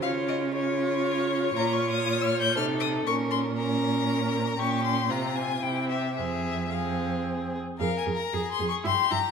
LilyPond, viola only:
\new Staff \with { instrumentName = "Viola" } { \time 3/4 \key f \minor \tempo 4 = 118 f'4 f'2 | f'2 ees'4 | des'4 des'2 | des'4 c'4 c'4 |
c'4 c'4. r8 | aes'8 aes'8 aes'8 aes'8 e'8 e'8 | }